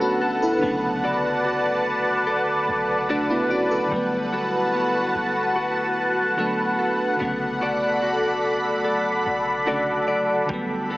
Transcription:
Already playing: G1 D3 F#3 G3 A3 B3 D4 F#4 A4 B4 F#5 A5
0.01 C#4 F#4
0.22 A4
0.42 E4 A4
0.59 D3 F#3 B3 D5 A5
0.63 B1 C#3 A3
1.04 F#4 A4 D5
1.45 F#4
2.27 A4
2.69 B1
3.09 A3 D4 F#4 A4 D5
3.30 B3 E4
3.50 C#4 F#4 D5
3.71 E4 A4
3.88 G1 D3 F#3 G3 F#4 F#5 A5
3.93 A3 B3
4.32 B3 F#4 A4
4.74 B3
5.15 G1
5.56 F#4
6.36 D3 F#3 A3 B3 D4 F#4 A4
6.79 A4
7.16 D3 F#3 B3 A4 B5
7.21 B1 C#3 A3 D5
7.61 F#4 A4 D5
8.02 F#4
8.85 D2 A4
9.26 B1
9.65 C#3 D3 F#3 A3 F#4 A4 D5
10.08 D5
10.46 G1 D3 F#3 G3 F#5 A5 B5, kick
10.51 A3 B3
10.90 B3 F#4 A4

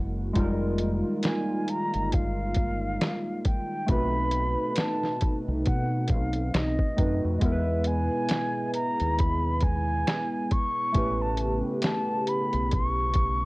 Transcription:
Already playing: F#1 E3 G#3 A#3 C#4 E4 F#4 A#4
0.33 F1 D#3 G3 G#3 D#4 F4, kick, closed hi-hat
0.39 A#4
0.78 closed hi-hat
1.23 G#5, finger snap, snare, closed hi-hat
1.68 A#5, closed hi-hat
1.94 G1, closed hi-hat
2.12 F5, kick, closed hi-hat
2.54 kick, closed hi-hat
3.01 finger snap, snare, closed hi-hat
3.45 G5, kick, closed hi-hat
3.86 B1 B2 A3 C4 D#4 F#4 B4 B5, kick, closed hi-hat
3.92 B4
4.31 closed hi-hat
4.76 A5, finger snap, snare, closed hi-hat
5.04 snare
5.21 kick, closed hi-hat
5.48 C2
5.65 B2 C4 F#5, kick, closed hi-hat
6.08 B1 F5, kick, closed hi-hat
6.33 closed hi-hat
6.54 B1 D#5, finger snap, snare, closed hi-hat
6.79 kick
6.96 F#2 A3 C4 D#4 F#4 B4, kick, closed hi-hat
7.25 F2
7.37 G#3 D#5
7.41 E2 B2 G#3 B3 E4 A#4 E5, kick, closed hi-hat
7.52 B4
7.84 G#5, closed hi-hat
8.29 finger snap, snare, closed hi-hat
8.74 A#5, closed hi-hat
9.00 D#2, closed hi-hat
9.18 B5, kick, closed hi-hat
9.61 G#5, kick, closed hi-hat
10.07 finger snap, snare, closed hi-hat
10.51 C#6, kick, closed hi-hat
10.92 A1 C#3 A3 B3 C#4 E4 G4, kick, closed hi-hat
10.97 B4
11.22 A5
11.37 closed hi-hat
11.82 A5, finger snap, snare, closed hi-hat
12.27 B5, closed hi-hat
12.53 B1, closed hi-hat
12.71 C#6, kick, closed hi-hat
13.14 kick, closed hi-hat

